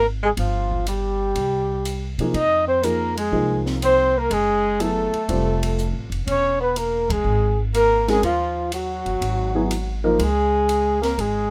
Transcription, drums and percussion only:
0.37 kick, ride
0.71 kick
0.87 hi-hat pedal, ride
1.35 kick, ride
1.85 hi-hat pedal, ride
2.19 ride
2.34 kick, ride
2.83 hi-hat pedal, ride
3.17 ride
3.32 kick
3.66 snare
3.82 hi-hat pedal, ride
4.31 kick, ride
4.80 hi-hat pedal, ride
5.14 ride
5.29 kick, ride
5.63 ride
5.78 hi-hat pedal
6.12 ride
6.27 kick, ride
6.76 hi-hat pedal, ride
7.10 kick, ride
7.74 hi-hat pedal, ride
8.08 snare, ride
8.23 kick, ride
8.72 hi-hat pedal, ride
9.06 ride
9.21 kick, ride
9.71 hi-hat pedal, ride
10.19 kick, ride
10.69 hi-hat pedal, ride
11.03 snare, ride
11.18 kick, ride

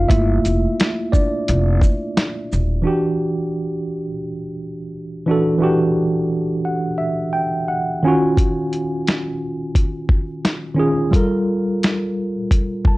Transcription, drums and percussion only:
0.10 kick, closed hi-hat
0.45 closed hi-hat, shaker
0.80 snare, closed hi-hat
1.13 kick, shaker
1.48 closed hi-hat
1.81 kick, shaker
2.17 snare, closed hi-hat
2.52 shaker
8.37 kick, closed hi-hat
8.73 closed hi-hat
9.07 snare, closed hi-hat
9.75 kick, closed hi-hat
10.09 kick
10.45 snare, closed hi-hat
11.13 kick, closed hi-hat
11.83 snare, closed hi-hat
12.51 kick, closed hi-hat
12.85 kick

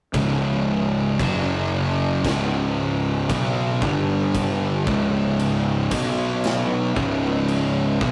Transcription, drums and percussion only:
0.14 kick, crash
1.20 kick, crash
2.25 kick, snare, crash
3.30 kick, crash
3.82 kick
4.35 kick, crash
4.87 kick
5.39 crash
5.91 kick, crash
6.44 snare, crash
6.96 kick
7.48 crash
8.01 kick

